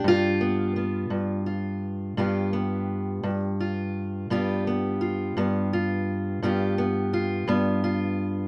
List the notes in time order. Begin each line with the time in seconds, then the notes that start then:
Already playing: B3 G4
0.04 G2 F4
0.41 B3
0.76 B3
1.10 G2
1.46 F4
2.17 G2 B3 F4 G4
2.53 B3
3.23 G2
3.60 F4
4.30 G2 B3 F4 G4
4.67 B3
5.01 F4
5.37 G2 B3
5.73 F4
6.42 G2 B3 F4 G4
6.78 B3
7.13 F4
7.48 G2 B3
7.84 F4